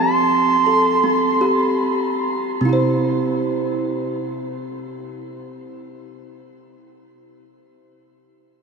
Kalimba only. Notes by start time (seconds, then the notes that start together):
Already playing: F3 C4
0.66 A4
1.03 C4
1.41 G4
2.61 C3 C4
2.65 E4 G4
2.73 C5